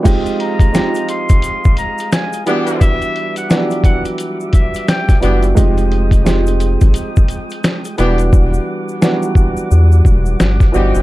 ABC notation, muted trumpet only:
X:1
M:4/4
L:1/16
Q:"Swing 16ths" 1/4=87
K:Fdor
V:1 name="Muted trumpet"
z2 b4 c'4 b2 a2 z2 | =e3 ^f z2 f z3 e2 g2 z2 | z16 | z16 |]